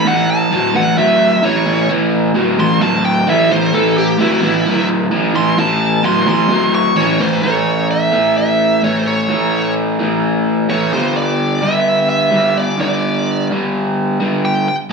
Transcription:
0.05 A2 E3 F#5
0.30 A5
0.51 A2 F#3 A5
0.74 A2 E3 F#5
0.97 A2 F#3 E5
1.43 A2 E3 C#5
1.66 A2 E3
1.89 A2 E3
2.35 A2 F#3
2.58 A2 E3 C6
2.81 A2 F#3 A5
3.05 G5
3.27 A2 E3 E5
3.50 A2 E3 C5
3.73 A2 E3 A4
3.98 G4
4.19 A2 F#3 E4
4.43 A2 E3 E4
4.66 A2 F#3
5.11 A2 E3
5.34 A2 E3 C6
5.58 A2 E3 A5
6.03 A2 F#3 C6
6.26 A2 E3 C6
6.49 A2 F#3
6.75 C#6
6.96 A2 E3 C#5
7.20 A2 E3 C5
7.42 A2 E3 A3 C#5
7.91 E5
8.12 A2 E3 A3
8.38 E5
8.82 A2 E3 A3 C#5
8.99 C5
9.07 C#5
9.28 A2 E3 A3
9.99 A2 E3 A3
10.69 A2 E3 A3 C#5
10.93 G2 D3 G3 C5
11.17 D5
11.61 G2 D3 G3 E5
12.09 E5
12.31 G2 D3 G3
12.57 D5
12.79 G2 D3 G3 D5
13.49 G2 D3 G3
14.20 G2 D3 G3
14.45 G5
14.68 G5

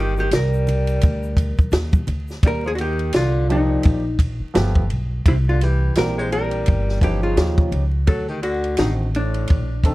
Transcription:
Already playing: G1 D#3
0.00 G4
0.16 D#3 G4, shaker
0.31 C2 G3, snare, hi-hat pedal, ride, shaker
0.35 A#4
0.53 shaker
0.67 ride, low conga, shaker
0.87 ride, shaker
1.01 D2, kick, ride, shaker
1.23 shaker
1.37 kick, ride, shaker
1.58 muted upright bass stroke, kick, high conga, shaker
1.71 D#2, snare, hi-hat pedal, ride, shaker
1.93 kick, high conga, shaker
2.07 D2, ride, low conga, shaker
2.28 snare, shaker
2.43 D#2 G3, kick, ride
2.47 A#4
2.65 F3 G#4
2.73 D3 F#4
2.78 D#3 G4, ride
2.99 ride
3.13 C2 D3 F4, snare, hi-hat pedal, ride
3.49 A#2 F3 D#4 G4 D5, ride
3.83 A#1, kick, ride
4.19 kick, ride
4.40 muted upright bass stroke
4.54 G1 F3 A3 B3 G4, snare, hi-hat pedal, ride
4.75 kick
4.90 B1, ride
5.25 C2 C3 E4, kick, ride
5.49 D3 F4
5.61 E3 G4, ride
5.95 A#1 E3 G3 A#3 C4 F#4 A#4, snare, hi-hat pedal, ride
6.04 G4
6.18 G#3 C5
6.32 G3 A#4, ride
6.51 ride
6.66 G1, kick, ride
6.89 snare
7.01 E3 F3 C#4 D#4 G4, kick, ride
7.23 C#3 F4
7.37 D#2 F3 C#4 D#4 G4, snare, hi-hat pedal, ride
7.58 kick
7.72 C#2, ride
8.07 D2 F#3 A4, kick, ride
8.28 D#3 G4
8.42 D3 F#4, ride
8.64 ride
8.77 A1 C3 D#3 C4 D4 D#4 F#4, snare, hi-hat pedal, ride
9.14 A2 D4, ride
9.34 ride
9.47 A#1, kick, ride
9.83 D#3 C4 D4 A4, kick, ride

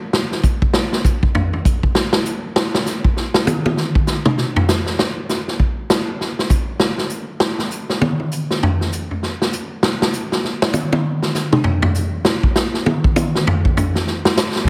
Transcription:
0.13 snare
0.32 snare
0.43 kick, hi-hat pedal
0.62 kick
0.73 snare
0.93 snare
1.04 kick, hi-hat pedal
1.23 kick
1.35 floor tom
1.53 floor tom
1.65 kick, hi-hat pedal
1.83 kick
1.95 snare
2.13 snare
2.25 hi-hat pedal
2.56 snare
2.75 snare
2.86 snare, hi-hat pedal
3.04 kick
3.17 snare
3.34 snare
3.47 hi-hat pedal, high tom
3.66 high tom
3.77 snare
3.95 kick
4.07 snare, hi-hat pedal
4.25 mid tom
4.38 snare
4.56 floor tom
4.68 snare, hi-hat pedal
4.86 snare
4.99 snare
5.29 snare, hi-hat pedal
5.48 snare
5.60 kick
5.90 snare, hi-hat pedal
6.21 snare
6.39 snare
6.49 kick, hi-hat pedal
6.80 snare
6.98 snare
7.10 hi-hat pedal
7.40 snare
7.59 snare
7.71 hi-hat pedal
7.90 snare
8.01 high tom
8.20 high tom
8.31 hi-hat pedal
8.50 snare
8.63 floor tom
8.81 snare
8.92 hi-hat pedal
9.11 floor tom
9.23 snare
9.42 snare
9.53 hi-hat pedal
9.83 snare
10.02 snare
10.13 hi-hat pedal
10.32 snare
10.44 snare
10.62 snare
10.73 hi-hat pedal, high tom
10.93 high tom
11.22 snare
11.35 snare, hi-hat pedal
11.52 mid tom
11.64 floor tom
11.82 floor tom
11.94 hi-hat pedal
12.25 snare
12.43 kick
12.55 snare, hi-hat pedal
12.74 snare
12.86 high tom
13.04 kick
13.16 hi-hat pedal, high tom
13.35 snare
13.47 floor tom
13.65 kick
13.77 floor tom, hi-hat pedal
13.95 snare
14.07 snare
14.25 snare
14.37 snare, hi-hat pedal
14.56 snare

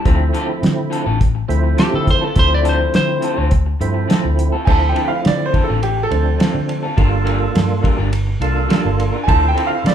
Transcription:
0.04 D2 D3 F3 A3 C4 E4 F4 A4, kick, closed hi-hat
0.20 muted clean electric guitar stroke
0.33 D3 C4 F4 A4, closed hi-hat
0.48 muted clean electric guitar stroke
0.63 D3, snare, closed hi-hat
0.90 D3 C4 F4 A4, closed hi-hat
1.06 A1 D3 C4 F4 A4
1.19 muted clean electric guitar stroke, kick, closed hi-hat
1.35 muted clean electric guitar stroke
1.48 D2 F3 A3 C4 E4, muted clean electric guitar stroke, closed hi-hat
1.63 muted clean electric guitar stroke
1.77 D3 C4 F4 G4 A4, snare, closed hi-hat
1.93 D3 A4, muted clean electric guitar stroke
2.06 muted clean electric guitar stroke, kick, closed hi-hat
2.10 C5
2.21 C4 F4 A4
2.36 D2 F3 A3 C4 E4 C5, kick, closed hi-hat
2.50 D5, muted clean electric guitar stroke
2.63 D3 C4 F4 A4, closed hi-hat
2.69 C5
2.78 muted clean electric guitar stroke
2.94 D3 C5, snare, closed hi-hat
3.21 D3 C4 F4 A4, closed hi-hat
3.37 D2 D3 C4 F4 A4
3.51 muted clean electric guitar stroke, kick, closed hi-hat
3.66 muted clean electric guitar stroke
3.80 G2 F3 A3 C4 E4, muted clean electric guitar stroke, closed hi-hat
3.94 muted clean electric guitar stroke
4.08 D3 C4 F4 A4, snare, closed hi-hat
4.23 D2, muted clean electric guitar stroke
4.37 muted clean electric guitar stroke, closed hi-hat
4.52 C4 F4 A4
4.65 D2 D3 F3 A3 C4 E4 F4 A4 G#5, kick, crash
4.70 A5
4.81 muted clean electric guitar stroke
4.89 G5
4.94 D3 C4 F4 A4, ride
5.08 F5, muted clean electric guitar stroke
5.25 D3 D5, snare, ride
5.46 C5
5.52 D3 C4 F4 A4, kick, ride
5.64 A4
5.68 A1 D3 C4 F4 A4
5.82 G4, muted clean electric guitar stroke, ride
5.97 muted clean electric guitar stroke
6.03 A4
6.10 D2 F3 A3 C4 D4, muted clean electric guitar stroke, ride
6.25 muted clean electric guitar stroke
6.39 D3 C4 F4 A4, snare, ride
6.54 D3, muted clean electric guitar stroke
6.68 muted clean electric guitar stroke, ride
6.83 C4 F4 A4
6.96 G1 G3 A#3 D4 F4 A4 A#4, kick, ride
7.12 muted clean electric guitar stroke
7.24 G3 D4 F4 A#4, ride
7.41 muted clean electric guitar stroke
7.55 G2, snare, ride
7.82 G3 D4 F4 A#4, kick, ride
7.98 G1 G3 D4 F4 A#4
8.12 muted clean electric guitar stroke, ride
8.27 muted clean electric guitar stroke
8.40 C2 A#3 D4 F4 A4, muted clean electric guitar stroke, ride
8.56 muted clean electric guitar stroke
8.69 G3 D4 F4 A#4, snare, ride
8.84 G1, muted clean electric guitar stroke
8.98 muted clean electric guitar stroke, ride
9.13 D4 F4 A#4
9.24 D3 C4 F4 G#5
9.28 D2 C4 E4 F4 A4 A5, kick, ride
9.42 muted clean electric guitar stroke
9.48 G5
9.55 D3 C4 F4 A4, ride
9.67 F5, muted clean electric guitar stroke
9.84 D3 D5, snare, ride

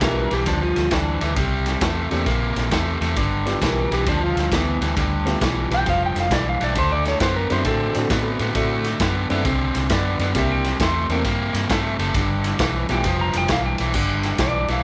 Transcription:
0.00 B1 G2 E3 A3 B3 D4 F4 G4 A#4, kick, snare, ride
0.31 B1 G2 E3 G4, snare, ride
0.46 D2 G2 F3 D4, kick, snare, ride
0.63 F4
0.76 D2, snare, ride
0.91 D2 G2 E3 D4, kick, snare, ride
1.21 D2 G2 E3, snare, ride
1.36 C2 C3 G3, kick, snare, ride
1.66 snare, ride
1.81 E2 C3 A3, kick, snare, ride
2.10 E2 C3 A3 A#3 C4 D4 E4 G4, snare, ride
2.26 A#1 C3 A#3, kick, snare, ride
2.56 A#1, snare, ride
2.71 E2 C3 A3, kick, snare, ride
3.01 E2 C3 A3, snare, ride
3.16 G1 G2 D3, kick, snare, ride
3.46 G3 B3 D4 F4 G4, snare, ride
3.61 B1 G2 E3 A#4, kick, snare, ride
3.91 B1 G2 E3 G4, snare, ride
4.06 D2 G2 F3 D4, kick, snare, ride
4.24 F4
4.36 D2, snare, ride
4.52 D2 G2 E3 B3, kick, snare, ride
4.81 D2 G2 E3, snare, ride
4.96 D2 G2 D3, kick, snare, ride
5.25 A3 B3 D4 F4 G4, snare, ride
5.41 B1 G2 E3, kick, snare, ride
5.70 B1 G2 E3, snare, ride
5.74 G5
5.86 F1 G2 F3 F5, kick, snare, ride
6.06 G5
6.16 F1, snare, ride
6.20 F5
6.30 B1 G2 E3 D5, kick, snare, ride
6.49 F5
6.60 B1 G2 E3 D5, snare, ride
6.75 D2 D3 A3 C5, kick, snare, ride
6.92 D5
7.05 C#5, snare, ride
7.20 F#2 D3 B3 C5, kick, snare, ride
7.36 A#4
7.49 F#2 D3 A3 B3 C4 D4 E4 F#4 C5, snare, ride
7.65 A2 D3 C4 A4, kick, snare, ride
7.94 A2 A3 C4 D4 E4 F#4, snare, ride
8.10 A2 D3 B3, kick, snare, ride
8.39 A2 D3 B3, snare, ride
8.54 A2 D3 A3 C4 D4 E4 F#4, kick, snare, ride
8.84 snare, ride
9.00 F#2 D3 B3, kick, snare, ride
9.29 F#2 D3 A3 B3 C4 D4 E4 A4, snare, ride
9.45 C2 D3 C4, kick, snare, ride
9.75 C2, snare, ride
9.90 F#2 D3 B3 D5, kick, snare, ride
10.19 F#2 D3 B3, snare, ride
10.34 C2 C3 G3 A#3 C4 D4 E4 G4, kick, snare, ride
10.39 E5
10.52 G5
10.64 snare, ride
10.80 E2 C3 A3 C6, kick, snare, ride
11.09 E2 C3 A3 A#3 C4 D4 E4 A#4 G5, snare, ride
11.24 G2 C3 A#3, kick, snare, ride
11.54 G2, snare, ride
11.69 G2 C3 A3 E5, kick, snare, ride
11.98 F#1 C3 A3, snare, ride
12.14 G1 G2 D3, kick, snare, ride
12.44 snare, ride
12.59 B1 G2 E3, kick, snare, ride
12.88 B1 G2 E3 A3 B3 D4 F4 G4 G5, snare, ride
13.04 F1 G2 F3, kick, snare, ride
13.21 A#5
13.33 F1, snare, ride
13.37 G5
13.48 B1 G2 E3 F5, kick, snare, ride
13.66 G5
13.78 B1 G2 E3, snare, ride
13.94 G1 G2 D3, kick, crash
14.23 snare, ride
14.38 B1 G2 E3 D5, kick, snare, ride
14.68 B1 G2 E3, snare, ride
14.72 F5

